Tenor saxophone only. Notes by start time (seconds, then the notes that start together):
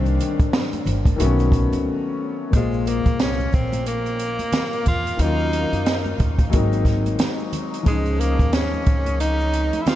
Already playing: C4
2.56 G#3
2.88 A#3
3.21 C#4
3.54 C4
3.88 A#3
4.88 F4
5.21 D#4
7.87 G#3
8.21 A#3
8.54 C#4
9.20 D#4
9.82 E4
9.88 F4